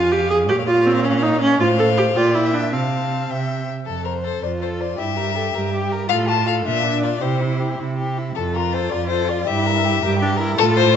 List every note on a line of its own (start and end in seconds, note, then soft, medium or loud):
0.00 0.51 F2 medium
0.00 0.13 F4 loud
0.00 0.44 F5 medium
0.00 0.45 G#5 medium
0.12 0.29 G4 loud
0.30 0.38 G#4 loud
0.49 1.60 A#2 medium
0.49 0.56 G4 medium
0.49 1.56 C#5 medium
0.49 1.57 F5 medium
0.67 0.88 F4 loud
0.87 1.06 C4 loud
1.04 1.24 C#4 loud
1.22 1.40 D#4 loud
1.41 1.60 C#4 loud
1.60 2.13 A2 medium
1.60 1.68 F4 loud
1.60 2.19 C5 medium
1.60 2.17 F5 medium
1.79 1.86 A4 loud
1.97 2.05 G4 loud
2.16 2.74 A#2 medium
2.16 2.36 F4 loud
2.16 2.47 D5 medium
2.16 2.72 G5 medium
2.35 2.55 E4 medium
2.46 2.75 E5 medium
2.53 2.74 D4 medium
2.73 3.29 C3 medium
2.73 3.68 C4 medium
2.73 3.32 F5 soft
2.73 3.31 A5 soft
3.30 3.67 C3 soft
3.30 3.68 E5 soft
3.30 3.68 G5 soft
3.86 4.37 F2 medium
3.86 4.04 A4 medium
3.86 4.07 A4 soft
4.05 4.12 A#4 soft
4.05 4.25 C5 soft
4.24 4.44 A4 soft
4.24 4.42 C5 soft
4.42 4.92 F2 soft
4.42 5.00 F4 soft
4.42 4.61 C5 soft
4.42 4.50 D5 medium
4.62 4.82 A4 soft
4.62 4.70 C5 medium
4.80 4.97 C5 soft
4.80 4.99 D5 medium
4.98 5.48 G2 medium
4.98 5.17 E4 soft
4.98 5.18 G4 soft
4.98 5.91 E5 medium
5.17 5.36 G4 soft
5.17 5.37 A#4 soft
5.36 5.56 G4 soft
5.36 5.44 A4 medium
5.54 6.03 G2 medium
5.54 6.08 G4 medium
5.54 5.73 A#4 soft
5.74 5.93 G4 medium
5.92 6.09 A#4 medium
6.09 6.59 A2 medium
6.09 6.64 F4 medium
6.09 6.31 A4 medium
6.09 6.17 F5 medium
6.28 6.48 F4 medium
6.28 6.47 A5 medium
6.46 6.66 A4 medium
6.46 6.55 F5 medium
6.65 7.15 A#2 medium
6.65 7.24 D4 medium
6.65 6.85 F4 medium
6.65 7.02 E5 medium
6.84 7.05 D4 medium
7.03 7.21 F4 medium
7.03 7.23 D5 medium
7.21 7.72 C3 medium
7.21 8.08 E4 medium
7.21 7.42 G4 soft
7.21 7.79 C5 medium
7.40 7.61 E4 soft
7.60 7.81 G4 soft
7.78 8.29 C3 medium
7.78 7.96 E4 soft
7.97 8.19 G4 soft
8.18 8.37 E4 soft
8.35 8.86 F2 medium
8.35 9.48 F4 medium
8.35 8.43 A4 medium
8.35 8.58 A4 soft
8.54 8.76 F4 soft
8.54 8.74 A#4 medium
8.73 8.94 A4 soft
8.73 8.91 C5 medium
8.90 9.41 F2 medium
8.90 9.10 F4 medium
8.90 9.08 D5 medium
9.09 9.30 A4 medium
9.09 9.30 C5 medium
9.29 9.46 F4 medium
9.29 9.48 D5 medium
9.47 9.96 G2 medium
9.47 10.02 E4 medium
9.47 9.68 G4 medium
9.47 10.39 E5 medium
9.66 9.86 A#4 medium
9.85 10.04 G4 medium
10.02 10.52 G2 medium
10.02 10.21 G4 loud
10.02 10.18 A#4 medium
10.18 10.29 D4 medium
10.18 10.38 G4 medium
10.37 10.60 E4 medium
10.37 10.56 A#4 medium
10.57 10.96 A2 loud
10.57 10.96 F4 medium
10.57 10.96 A4 medium
10.57 10.66 A4 loud
10.77 10.96 C5 loud